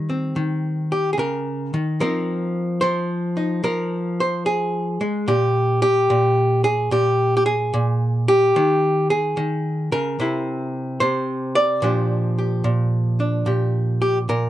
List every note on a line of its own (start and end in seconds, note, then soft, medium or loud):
0.00 0.35 D#3 medium
0.00 1.96 G3 medium
0.00 2.02 F4 soft
0.00 0.92 A#4 medium
0.10 2.01 C4 soft
0.36 1.17 D#3 medium
0.92 1.13 G4 medium
1.13 1.18 G#4 medium
1.18 1.72 C#3 medium
1.18 2.00 A#4 medium
1.74 2.00 D#3 medium
2.00 2.82 F3 medium
2.00 5.31 C4 medium
2.00 3.36 D#4 soft
2.00 2.81 A#4 medium
2.81 3.63 F3 medium
2.81 3.63 C5 medium
3.37 5.24 D#4 soft
3.64 5.00 F3 medium
3.64 4.18 A#4 medium
4.20 4.46 C5 medium
4.46 5.27 G#4 medium
5.01 5.27 G#3 medium
5.28 6.09 A#2 medium
5.28 5.81 G4 medium
5.82 6.64 G4 medium
6.10 6.90 A#2 medium
6.64 6.91 G#4 medium
6.91 7.72 A#2 medium
6.91 7.35 G4 medium
7.37 7.45 G4 medium
7.46 8.27 G#4 medium
7.74 8.51 A#2 medium
8.28 9.10 G4 medium
8.56 9.36 D#3 medium
9.10 9.91 G#4 medium
9.37 9.91 D#3 medium
9.92 10.19 C#3 medium
9.92 11.00 A#4 medium
10.20 11.00 C3 medium
10.20 11.80 C4 soft
10.20 11.80 E4 soft
11.00 11.82 C3 medium
11.00 11.55 C5 loud
11.55 14.01 D5 medium
11.82 12.63 A#2 medium
11.82 14.49 F3 medium
11.82 13.19 D4 soft
11.82 12.37 G4 medium
12.38 13.46 G4 soft
12.64 13.45 A#2 medium
13.20 14.49 D4 soft
13.46 14.28 A#2 medium
13.46 14.00 G4 soft
14.02 14.18 G4 medium
14.29 14.49 A#2 medium
14.29 14.49 A#4 medium